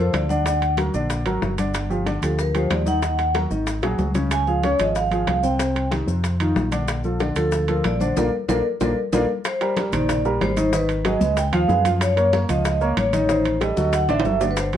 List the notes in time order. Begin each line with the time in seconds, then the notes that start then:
Already playing: F2 F3 F4 C5
0.00 A4
0.13 D2 D5, high bongo, low bongo, high conga, high timbale, maracas
0.29 D3 D4 D5 F#5, high conga, maracas
0.45 D3 D4 D5, high bongo, high conga, high timbale, maracas
0.61 high bongo, high conga, high timbale, maracas
0.77 F#3 F#4 A#4, high bongo, high conga, high timbale, maracas
0.94 A#1 D3 D4 D5, high bongo, high conga, maracas
1.10 high bongo, high conga, high timbale, maracas
1.26 G#1 F#3 F#4 A#4, high conga, high timbale, maracas
1.42 G1, high bongo, low bongo, high conga, maracas
1.58 D3 D4 D5, high bongo, high conga, high timbale, maracas
1.74 high bongo, high timbale, maracas
1.89 F3 F4 G4, high conga, maracas
2.06 D3 D4 D5, high bongo, high conga, high timbale, maracas
2.22 D2 F3 F4 G4 A4, high timbale, maracas
2.39 A#4, high bongo, high conga, maracas
2.54 F3 F4 G4 C5, high conga, high timbale, maracas
2.70 D#2 D5, high bongo, low bongo, high conga, high timbale, low timbale, maracas
2.86 D#3 D#4 D#5 F#5, high conga, maracas
3.02 D#3 D#4 D#5, high bongo, high timbale, maracas
3.19 high bongo, high conga, high timbale, maracas
3.34 F#3 F#4 A#4, high bongo, high conga, high timbale, maracas
3.50 G#1 D#3 D#4 D#5, high bongo, high conga, maracas
3.67 high bongo, high conga, high timbale, maracas
3.83 A#1 F#3 F#4 G#4, high bongo, high conga, high timbale, maracas
3.99 C#2, high conga, low timbale, maracas
4.15 C#3 C#4 C#5, low bongo, high conga, high timbale, maracas
4.31 G#5, high bongo, high conga, high timbale, maracas
4.47 F3 F4 G#4 F5, high conga, maracas
4.63 C#3 C#4 C#5, high bongo, high conga, high timbale, maracas
4.79 G#1 F3 F4 G#4 D#5, high timbale, maracas
4.95 F5, high bongo, high conga, maracas
5.11 F3 F4 G#4, high conga, high timbale, maracas
5.27 C2, high bongo, low bongo, high conga, high timbale, low timbale, maracas
5.43 C3 C4 C5 G5, high conga, maracas
5.59 C3 C4 C5, high bongo, high conga, high timbale, maracas
5.75 high bongo, high conga, high timbale, maracas
5.91 D#3 D#4 G4, high bongo, high conga, high timbale, maracas
6.07 F2 C3 C4 C5, high bongo, high conga, maracas
6.24 high bongo, high conga, high timbale, maracas
6.40 D#3 D#4 F4, high conga, high timbale, maracas
6.56 A#1, high bongo, low bongo, high conga, maracas
6.71 D3 D4 D5, high bongo, high conga, high timbale, maracas
6.88 high bongo, high conga, high timbale, maracas
7.04 F3 F4 A4, high conga, maracas
7.20 D3 D4 D5, high bongo, high conga, high timbale, maracas
7.36 D2 F3 F4 A4, high timbale, maracas
7.52 high bongo, high conga, maracas
7.68 F3 F4 A4 A#4, high conga, high timbale, maracas
7.84 A#1 D5, high bongo, low bongo, high conga, high timbale, maracas
8.00 D3 D4 C5 D5, high conga, maracas
8.16 A#1 A#3 D4 F4 A4 A#4 D5, low bongo, high conga, high timbale, maracas
8.48 A#1 A#3 D4 F4 A4 A#4 D5, low bongo, high conga, high timbale, maracas
8.80 A#1 A#3 D4 F4 A4 A#4 D5, low bongo, high conga, high timbale, maracas
9.12 A#1 A#3 D4 F4 A4 A#4 D5, low bongo, high conga, high timbale, maracas
9.45 C5, high bongo, high conga, high timbale, maracas
9.61 G3 G4 A#4, high bongo, high conga, high timbale, maracas
9.77 G3 G4 A#4, high bongo, high conga, high timbale, maracas
9.92 A#1 D#3 D#4 C5 D5, low conga, high timbale, maracas
10.09 high bongo, high conga, low conga, high timbale, maracas
10.25 G3 G4 A#4, high bongo, high conga, maracas
10.41 G#1 C5, high bongo, low bongo, high conga, high timbale, low timbale, maracas
10.57 D#3 D#4 D#5, high bongo, high conga, high timbale, maracas
10.73 D#3 D#4 B4 D#5, high bongo, high conga, maracas
10.89 high bongo, high conga, high timbale, maracas
11.05 F#3 F#4 G#4 D#5, high bongo, high conga, high timbale, maracas
11.20 C#2 G#3 G#4 B4, high conga, maracas
11.37 G5, high bongo, high conga, high timbale, maracas
11.53 D#2 F3 F4 F5, high bongo, high timbale, maracas
11.68 F#2 G#3 G#4 B4, high bongo, low bongo, high conga, maracas
11.85 F3 F4 F5, high bongo, high conga, high timbale, maracas
12.01 C#5, high bongo, high conga, high timbale, maracas
12.16 A#3 A#4 C#5, high bongo, high conga, high timbale, maracas
12.33 A#3 A#4 C#5, high bongo, high conga, high timbale, maracas
12.48 C#2 F3 F4 D#5 F5, low conga, high timbale, maracas
12.65 high bongo, high conga, high timbale, maracas
12.81 A#3 A#4 C#5, high bongo, high conga, maracas
12.97 A1 C#5, high bongo, low bongo, high conga, high timbale, maracas
13.13 D#3 D#4 D#5, high bongo, high conga, high timbale, maracas
13.28 D#3 D#4 C5 D#5, high bongo, high conga, maracas
13.45 high bongo, high conga, high timbale, maracas
13.61 G3 G4 A4 D#5, high bongo, high conga, high timbale, maracas
13.76 D2 F#3 F#4 A4, high conga, maracas
13.93 F#5, high bongo, high conga, high timbale, maracas
14.08 A1 D3 D4 D5 E5, high bongo, high conga, high timbale, maracas
14.20 high timbale
14.25 G1 F#3 F#4 A4, high bongo, low bongo, high conga, maracas
14.41 D3 D4 D5, high bongo, low timbale, maracas
14.51 B4
14.57 C5, high bongo, high conga, high timbale, maracas
14.73 F3 F4 G4, high bongo, high conga, high timbale, maracas